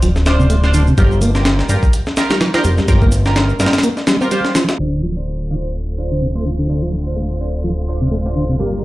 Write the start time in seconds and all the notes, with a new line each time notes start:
0.02 D1 F3, closed hi-hat, shaker
0.16 snare, shaker
0.26 D4 F4 C5, snare, closed hi-hat, shaker
0.40 C3, shaker
0.50 A3, closed hi-hat, shaker
0.64 D4 F4 C5, snare, shaker
0.74 D3, closed hi-hat, shaker
0.87 C3, shaker
0.98 G1 G3 F4 G4 A#4, kick, closed hi-hat, shaker
1.11 shaker
1.21 A#3, closed hi-hat, shaker
1.35 F4 G4 A#4, snare, shaker
1.45 snare, closed hi-hat, shaker
1.59 snare, shaker
1.69 G2 G3 F4 G4 A#4, closed hi-hat, shaker
1.83 kick, shaker
1.93 closed hi-hat, shaker
2.07 snare, shaker
2.17 F4 G4 A#4, snare, closed hi-hat, shaker
2.30 G3, snare, closed hi-hat, shaker
2.40 F3, snare, closed hi-hat, shaker
2.54 D4 F4 G4 A#4, snare, closed hi-hat, shaker
2.64 F1 G3, closed hi-hat, shaker
2.78 G3, snare, shaker
2.88 G1 G3 F4 G4 A#4, kick, closed hi-hat, shaker
3.02 A#3, kick, shaker
3.12 closed hi-hat, shaker
3.26 F4 G4 A#4, snare, shaker
3.36 D4, snare, closed hi-hat, shaker
3.49 shaker
3.60 G2 F4 G4 A#4, snare, closed hi-hat, shaker
3.66 snare, closed hi-hat
3.73 snare, closed hi-hat, shaker
3.78 snare, closed hi-hat
3.83 A#3, closed hi-hat, shaker
3.97 snare, shaker
4.07 G3, snare, closed hi-hat, shaker
4.21 C4 F4 G4 A#4, shaker
4.31 G3 F4 G4 C5, closed hi-hat, shaker
4.45 snare, shaker
4.55 F3, snare, closed hi-hat, shaker
4.69 F4, snare, closed hi-hat, shaker
4.79 D1 D3 A3 C4 D4 F4 C5
5.03 F3
5.17 D4 F4 C5
5.51 D3 D4 F4 C5
5.98 D4 F4 C5
6.11 D3
6.21 C3
6.35 A3 D4 F4 C5
6.45 D3
6.59 D3
6.69 D3 D4 F4 C5
6.82 F3
7.06 D4 F4 C5
7.16 A3
7.41 D4 F4 C5
7.64 F3
7.88 D4 F4 C5
8.01 C3
8.11 A3
8.26 D4 F4 C5
8.36 D3
8.49 C3
8.59 G1 G3 A#3 D4 F4 G4 A#4